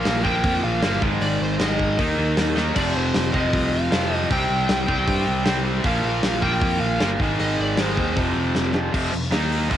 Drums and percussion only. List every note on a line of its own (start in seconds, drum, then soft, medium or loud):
0.06 snare loud
0.06 open hi-hat medium
0.25 kick medium
0.44 kick loud
0.44 open hi-hat medium
0.83 snare loud
0.83 open hi-hat medium
1.02 kick loud
1.22 open hi-hat medium
1.60 snare loud
1.60 open hi-hat medium
1.80 kick medium
1.99 kick loud
1.99 open hi-hat medium
2.37 snare loud
2.37 open hi-hat medium
2.57 snare medium
2.76 kick loud
2.76 open hi-hat medium
2.76 crash loud
3.14 snare loud
3.14 open hi-hat medium
3.34 kick medium
3.53 kick loud
3.53 open hi-hat medium
3.92 snare loud
3.92 open hi-hat medium
4.30 kick loud
4.30 open hi-hat medium
4.69 snare loud
4.69 open hi-hat medium
4.88 kick medium
5.08 kick loud
5.08 open hi-hat medium
5.46 snare loud
5.46 open hi-hat medium
5.84 kick loud
5.84 open hi-hat medium
6.23 snare loud
6.23 open hi-hat medium
6.42 kick medium
6.61 kick loud
6.61 open hi-hat medium
7.00 snare loud
7.00 open hi-hat medium
7.20 kick loud
7.39 open hi-hat medium
7.78 snare loud
7.78 open hi-hat medium
7.97 kick medium
8.17 kick loud
8.17 open hi-hat medium
8.55 snare medium
8.74 snare loud
8.94 kick loud
8.94 crash loud
9.13 open hi-hat medium
9.23 snare soft
9.32 snare loud
9.32 open hi-hat medium
9.52 open hi-hat medium
9.71 kick loud
9.71 open hi-hat medium